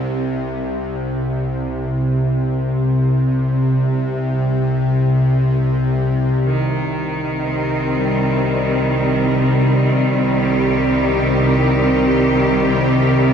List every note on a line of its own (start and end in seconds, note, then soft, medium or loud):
0.00 6.44 C2 medium
0.00 6.45 C3 medium
6.45 13.34 C2 medium
6.45 13.34 C3 medium
6.45 13.34 D#3 medium
7.44 13.34 C4 medium
7.95 13.34 G3 medium
10.31 13.34 G4 medium